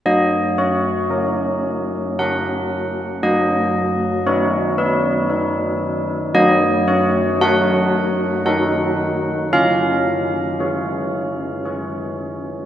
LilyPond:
\new Staff \with { instrumentName = "Church bells" } { \time 3/4 \key fis \major \tempo 4 = 57 << { dis''8 cis''4. fis''4 | dis''4 cis''8 b'4. | dis''8 cis''8 fis''4 fis''4 | eis''2 r4 | } \\ { fis4 <cis' ais'>4 <cis' ais'>4 | fis4 <dis' b'>4 <dis' b'>4 | fis4 <fis' ais'>4 <dis' fis' ais'>4 | cis'4 <gis' cis''>4 <gis' cis''>4 | } >> }